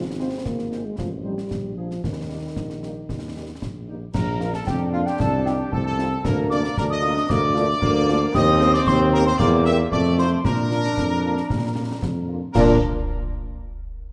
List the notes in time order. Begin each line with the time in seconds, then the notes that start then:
Already playing: G#1
0.19 G#3 C4 F4 C5
0.45 G#1 A#3, concert bass drum, snare
0.59 snare
0.71 G#3 C4 F4 C5, snare
0.85 G#3
0.98 A1 F3, concert bass drum, snare
1.24 F3 G3 C4 D#4 C5
1.38 snare
1.51 A#1, concert bass drum, snare
1.76 F3 A#3 D4 G#4
1.91 snare
2.03 D#2 D#3, concert bass drum, snare
2.30 G3 A#3 D#4 G4
2.56 A#1, concert bass drum, snare
2.70 snare
2.82 G3 A#3 D#4 G4, snare
3.09 D#2, concert bass drum, snare
3.35 G3 A#3 D#4 G4
3.61 A#1, concert bass drum, snare
3.88 G3 A#3 D#4 G4
4.14 A#1 A#4 A#5, concert bass drum, snare, crash
4.40 A#3 D4 F4, snare
4.54 A4 A5, snare
4.66 F2 D4 G4 G5, concert bass drum, snare
4.92 A#3 D4 F4 F5
5.06 G4 G5, snare
5.19 C2 A4 A5, concert bass drum, snare
5.45 F3 D#4 F4 G4 G5, snare
5.71 C2 C4 A4 A5, concert bass drum
5.84 A4 A5
5.98 F3 D#4 F4, snare
6.24 D2 A#3 A#4 A#5, concert bass drum, snare, crash
6.50 A#3 D4 F4 D5 D6, snare
6.64 snare
6.77 D2 D4 A#4 A#5, concert bass drum, snare
6.89 D#5 D#6
7.03 A#3 D4 F4
7.17 snare
7.28 D2 A#3 D5 D6, concert bass drum, snare
7.55 A3 A#3 D4 F4, snare
7.81 D2 A#3, concert bass drum
8.08 A#3 D4 F4, snare
8.33 D#2 C4 D#5 D#6, concert bass drum, snare, crash
8.61 A#3 C4 G4, snare
8.73 D5 D6, snare
8.87 D#2 C5 C6, concert bass drum, snare
9.13 A#3 C4 G4 A#4 A#5
9.26 C5 C6, snare
9.38 E2 A#3 D5 D6, concert bass drum, snare
9.65 A#3 C4 G4 E5 E6, snare
9.91 F2 A3 D5 D6, concert bass drum
10.18 A3 D#4 F4 C5 C6, snare
10.43 A#2 D4 A#4 A#5, concert bass drum, snare, crash
10.71 A#3 D4 F4, snare
10.84 snare
10.97 F2, concert bass drum, snare
11.24 A#3 D4 F4
11.37 snare
11.49 A#2, concert bass drum, snare
11.76 A#3 D4 F4
12.02 F2, concert bass drum, snare
12.28 A#3 D4 F4
12.53 A#2 F3 A#3 D4 F4 A#4 A#5, concert bass drum, snare, crash